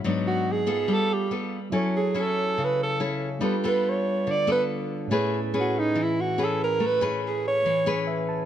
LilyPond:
<<
  \new Staff \with { instrumentName = "Alto saxophone" } { \time 4/4 \key a \major \tempo 4 = 142 r8 fis'8 gis'4 a'8 g'8 r4 | r8 gis'8 a'4 b'8 a'8 r4 | r8 b'8 cis''4 d''8 b'8 r4 | r4 fis'8 dis'8 e'8 fis'8 a'8 bes'8 |
b'8 e'8 gis'8 cis''4. r4 | }
  \new Staff \with { instrumentName = "Tine electric piano" } { \time 4/4 \key a \major << { r1 | r1 | r1 | r1 |
r2. e''8 a''8 | } \\ { r1 | <fis e' a' cis'' gis''>1 | <g d' f' a' b'>1 | <a, cis' e' gis' b'>1~ |
<a, cis' e' gis' b'>1 | } >> }
  \new Staff \with { instrumentName = "Nylon-string guitar" } { \time 4/4 \key a \major << { <fis b d'>4. <b f' a'>4. <b f' a'>8 r8 | <cis' e' a'>8 r8 <cis' e' a'>4. r8 <cis' e' a'>8 r8 | <b f' a'>8 <b f' a'>2 <b f' a'>4. | <cis' gis' b'>8 r8 <cis' gis' b'>4. r8 <cis' gis' b'>4 |
r8 <cis' gis' b'>2 <cis' gis' b'>4. | } \\ { gis,2 g2 | fis2 cis2 | g2 d2 | a2 e2 |
a2 e2 | } >> }
>>